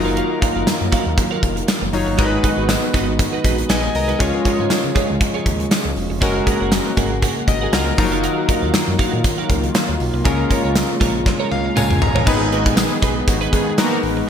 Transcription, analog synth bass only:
Already playing: F#1
0.56 F#1
0.67 F#2
0.81 F#2
1.06 D#2
1.43 F1
1.82 F#1
1.93 F#1
2.07 G1
2.19 G#1
2.58 G#1
2.94 G#1
3.44 A#1
3.70 A#1
3.95 C2
4.20 C#2
4.59 G#2
4.70 C#3
4.84 C#3
5.10 C#2
5.46 D#2
5.85 C#2
5.97 E1
6.10 F1
6.22 F#1
6.61 F#1
6.97 G#1
7.48 G#1
7.73 C#2
7.98 F#1
8.63 D#2
8.74 F#2
8.88 F#2
9.13 A#2
9.50 C#2
9.89 D#2
10.00 B1
10.14 C2
10.25 C#2
10.64 C#2
11.01 A#1
11.51 C#2
11.77 C#2
12.02 G1
12.27 G#1
12.66 A#1
13.03 B1
13.28 G#1
14.03 A1

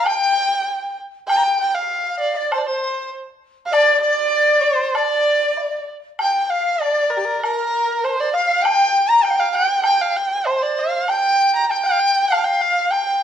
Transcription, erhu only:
0.06 G5
1.28 G5
1.61 G5
1.74 F5
2.20 D5
2.37 D5
2.51 C5
2.58 D5
2.66 C5
3.66 F5
3.73 D5
4.01 D5
4.62 C5
4.95 D5
6.21 G5
6.35 G5
6.50 F5
6.80 D5
7.10 A#4
7.17 G4
7.25 A#4
7.42 A#4
8.05 C5
8.20 D5
8.34 F5
8.64 G5
9.10 A#5
9.23 G5
9.40 F5
9.55 G5
9.85 G5
10.01 F5
10.16 G5
10.46 C5
10.62 D5
10.79 F5
11.09 G5
11.56 A#5
11.64 A#5
11.71 G5
11.86 F5
12.00 G5
12.28 F5
12.44 G5
12.61 F5
12.91 G5

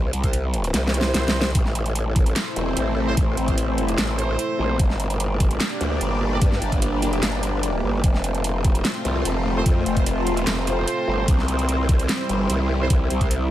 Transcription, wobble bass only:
Already playing: C2
0.13 C2
0.74 C2
1.15 C2
1.55 A1
2.56 E1
2.77 A1
3.17 A1
3.37 A1
3.98 A1
4.59 A#1
4.79 G1
5.81 D2
6.01 G1
6.42 G2
6.62 G1
7.04 F#1
7.23 G1
7.83 G1
8.04 F1
9.05 C2
9.25 F1
9.66 F2
9.86 F1
10.28 E1
10.47 F1
11.08 G1
11.28 C2
12.29 G1
12.50 C2
12.90 C2
13.10 C2

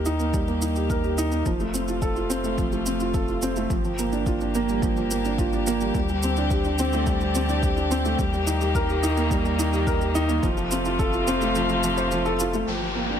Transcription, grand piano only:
Already playing: A#3 D#4 G4 A#4
0.06 D#4
0.20 A#3
0.34 G3
0.48 A#3
0.62 D#4
0.76 G4
0.90 A#4
1.04 G4
1.18 D#4
1.32 A#3
1.46 F3
1.60 A3
1.74 C4
1.88 F4
2.02 A4
2.16 F4
2.30 C4
2.44 A3
2.58 F3
2.72 A3
2.86 C4
3.01 F4
3.14 A4
3.29 F4
3.43 C4
3.57 A3
3.71 F3
3.85 F3
3.99 A#3
4.13 D4
4.27 F4
4.41 D4
4.55 A#3
4.69 G3
4.83 F3
4.97 F3
5.11 A#3
5.25 D4
5.39 F4
5.53 D4
5.67 A#3
5.81 G3
5.96 G3
6.10 G3
6.24 C4
6.38 D4
6.52 G4
6.66 D4
6.79 C4
6.94 A3
7.07 G3
7.21 G3
7.35 C4
7.49 D4
7.63 G4
7.77 D4
7.91 C4
8.05 A3
8.19 G3
8.33 G3
8.47 D#4
8.61 G4
8.75 A#4
8.89 G4
9.03 D#4
9.17 A#3
9.31 G3
9.45 G3
9.59 D#4
9.73 G4
9.87 A#4
10.01 G4
10.15 D#4
10.29 A#3
10.43 F3
10.57 F3
10.72 C4
10.86 F4
10.99 A4
11.13 F4
11.28 C4
11.42 A3
11.55 F3
11.70 F3
11.84 F3
11.98 C5
12.12 F3
12.25 A4
12.40 F4
12.54 A3
12.68 F3
12.82 F3
12.95 A#3
13.10 D4

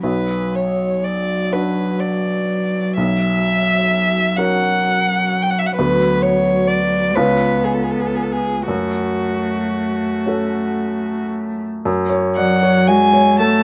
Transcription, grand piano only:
0.03 B1
1.52 D4 F#4 B4
2.97 B1
4.38 C#4 F#4 A#4
5.79 D2 B3 F#4 B4
7.17 C#2 C#4 F4 B4
8.68 F#2
10.26 C#4 F#4 A4
11.85 F#2
12.10 C#5
12.37 D5
12.63 C#5
12.88 F#4
13.13 C#5
13.40 A4

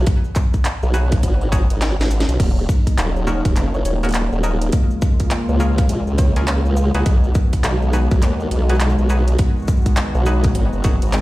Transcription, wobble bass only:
0.83 B1
1.23 G#1
1.70 G#1
1.99 G#1
2.28 B1
2.40 D#1
2.98 D#1
3.45 D#1
3.56 F#1
3.85 D#1
4.32 D#1
5.49 C#2
5.89 A#1
6.07 C#2
6.94 C#2
7.06 B1
7.64 B1
8.12 B1
8.22 D#2
8.51 B1
8.98 B1
10.15 B1
10.55 G#1
10.73 F#1
11.02 G#1

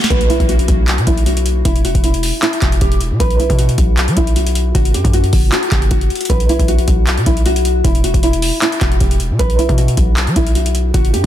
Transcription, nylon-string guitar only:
0.10 B4
0.30 E4
0.49 F#4
1.07 E4
1.26 F#4
1.65 E4
1.85 F#4
2.04 E4
2.43 E4
2.62 F#4
2.81 G4
3.20 B4
3.39 E4
3.59 F#4
4.17 E4
4.36 F#4
4.75 F#4
4.94 G4
5.14 F#4
5.52 F#4
5.72 G4
5.91 F#4
6.30 B4
6.49 E4
6.68 F#4
7.26 E4
7.46 F#4
7.84 E4
8.04 F#4
8.23 E4
8.62 E4
8.81 F#4
9.01 G4
9.39 B4
9.59 E4
9.78 F#4
10.36 E4
10.55 F#4
10.94 F#4
11.13 G4

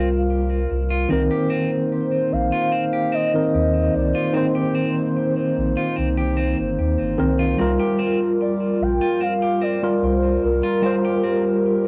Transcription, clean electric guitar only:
0.90 F4
1.10 C4
1.31 G4
1.50 C4
2.52 F4
2.72 C4
2.93 G4
3.12 C4
4.15 F4
4.34 C4
4.55 G4
4.75 C4
5.77 F4
5.96 C4
6.17 G4
6.37 C4
7.39 F4
7.58 C4
7.79 G4
7.99 C4
9.01 F4
9.20 C4
9.42 G4
9.61 C4
10.63 F4
10.83 C4
11.05 G4
11.23 C4

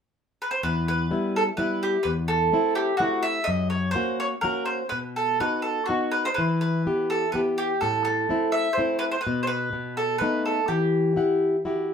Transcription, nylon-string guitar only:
0.63 E2
1.11 G3 B3 E4
1.58 G3 B3 E4
2.05 E2
2.52 A3 C4 E4
3.00 A3 C4 E4
3.48 F#2
3.95 A#3 C#4 F#4
4.43 A#3 C#4 F#4
4.92 B2
5.40 B3 D#4 F#4
5.89 B3 D#4 F#4
6.38 E3
6.86 B3 E4 G4
7.34 B3 E4 G4
7.82 A2
8.29 A3 C4 E4
8.78 A3 C4 E4
9.27 B2
9.73 B2
10.21 A3 B3 D#4
10.69 E3
11.16 E4 G4 F#5
11.65 E4 F#4 G4

